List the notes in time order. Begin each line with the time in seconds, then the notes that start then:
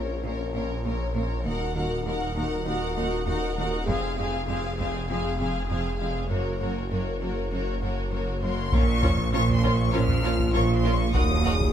Already playing: A#1 C#4 F4 A#4 C#5
0.23 A#2 C#4 F4 A#4 C#5
0.54 A#2 C#4 F4 A#4 C#5
0.85 A#2 C#4 F4 A#4 C#5
1.14 A#2 C#4 F4 A#4 C#5
1.45 D#1 D#2 D#4 F#4 A#4 F#5
1.75 D#2 D#4 F#4 A#4 F#5
2.06 D#2 D#4 F#4 A#4 F#5
2.36 D#2 D#4 F#4 A#4 F#5
2.66 D#2 D#4 F#4 A#4 F#5
2.96 D#2 D#4 F#4 A#4 F#5
3.26 D#2 D#4 F#4 A#4 F#5
3.57 D#2 D#4 F#4 A#4 F#5
3.87 F1 F2 C4 G#4 F5, taiko
4.17 F2 C4 G#4 F5
4.48 F2 C4 G#4 F5
4.78 F2 C4 G#4 F5, taiko
5.09 F2 C4 G#4 F5
5.39 F2 C4 G#4 F5
5.69 F2 C4 G#4 F5
5.99 F2 C4 G#4 F5
6.29 F#1 F#2 A#3 F#4 A#4 C#5
6.60 F#2 A#3 F#4 A#4 C#5
6.90 F#2 A#3 F#4 A#4 C#5
7.21 F#2 A#3 F#4 A#4 C#5
7.51 F#2 A#3 F#4 A#4 C#5
7.82 F#2 A#3 F#4 A#4 C#5
8.11 F#2 A#3 F#4 A#4 C#5
8.41 F#2 A#3 F#4 A#4 C#5 C6
8.72 A#1 A#2 F3 C#4 F4 A#4 C#5 C#6, taiko
9.02 C#4 F4 A#4 C#5, taiko low
9.18 taiko
9.33 A#1 A#2 C#4 F4 A#4 C#5 C#6
9.48 taiko low
9.54 C6
9.63 C#4 F4 A#4 C#5, taiko
9.74 C#6
9.93 A#1 A#2 C#4 F4 A#4 C#5 F6
10.09 taiko low
10.24 C#4 F4 A#4 C#5
10.39 taiko
10.54 A#1 A#2 C#4 F4 A#4 C#5 C#6
10.76 C6
10.85 C#4 F4 A#4 C#5
10.96 C#6
11.14 D#1 D#2 F#3 D#4 F#4 A#4 F#5 D#6, taiko
11.44 D#4 F#4 G#4 A#4 F#5, taiko low
11.60 taiko